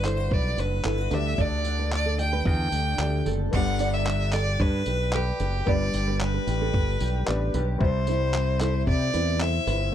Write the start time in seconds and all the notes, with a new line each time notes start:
Already playing: G1 G3 D4 F#4 B4
0.03 E4 A4 C5, clap, tambourine
0.17 F#4
0.30 B1 B4 D5, kick
0.57 F#1 D4 B4, tambourine
0.84 G1 E4 A4, clap
0.98 F#4
1.11 D2 D3 A3 G4 B4 D5 E5, tambourine
1.38 D2 D3 A4 D5, kick
1.65 D4, tambourine
1.79 B4
1.91 A4 D5, clap
2.06 A4
2.18 G4 G5, tambourine
2.33 B4
2.45 E2 A4 G5, kick
2.72 D2 D4, tambourine
2.98 D2 A3 G4 D5, clap
3.26 F#1 A4, tambourine
3.51 G1 G3 B3 D4 G4 F#5, kick, crash
3.55 D5
3.79 G4 D5, tambourine
3.94 E5
4.06 D4, clap
4.33 G4 A4 D5, clap, tambourine
4.60 G2 D4 B4, kick
4.86 B1 G4 B4, tambourine
5.12 G4 A4 B4, clap
5.40 F#1 G4 B4, tambourine
5.66 G1 G3 B3 D4 G4 D5, kick
5.70 B4
5.93 G1 G4, tambourine
6.08 B4
6.20 D4 B4, clap
6.34 B4
6.47 A1 G4, tambourine
6.61 A4
6.74 G1 D4, kick
7.00 B1 G4, tambourine
7.26 A1 B3 D4 G4 B4 D5, clap
7.54 B1 G4 B4, tambourine
7.78 C2 C3 G3 C4 E4 C5, kick
7.82 C5
8.07 E4 C5, tambourine
8.34 C4, clap
8.60 E4 A4, clap, tambourine
8.87 C3 C4 D5, kick
9.14 E2 E4 B4, tambourine
9.40 A4 C5 E5, clap
9.67 G1 E4 B4, tambourine